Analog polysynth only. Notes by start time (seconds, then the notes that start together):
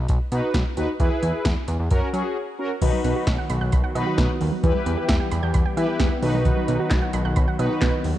0.32 D#4 F#4 B4
0.77 D#4 F#4 B4
1.00 E4 G#4 B4
1.91 C#4 F#4 A#4
2.13 C#4 F#4 G#4
2.59 C#4 F#4 A#4
2.82 D#4 F#4 B4
3.95 D#4 F#4 B4
4.64 E4 G4 B4
5.77 E4 G4 B4
6.23 D#4 F#4 B4
7.59 D#4 F#4 B4